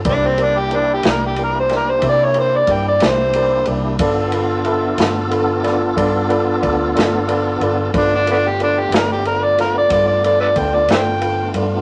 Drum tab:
RD |xxxxxxxxxxxx|xxxxxxxxxxxx|xxxxxxxxxxxx|
SD |---o-o---o--|---o-o---o--|---o-o---o--|
BD |o-----o-o---|o-----o-o---|o-----o-o---|